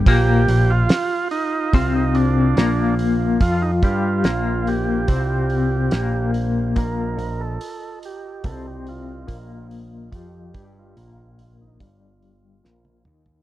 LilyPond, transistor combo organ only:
\new Staff \with { instrumentName = "Transistor combo organ" } { \time 4/4 \key bes \major \tempo 4 = 72 g'8. f'8. ees'8 f'16 ees'16 d'4 r8 | f'16 ees'16 f'4 g'2 r8 | bes'8. a'8. g'8 a'16 g'16 f'4 r8 | g'8. f'4 ees'16 f'4. r8 | }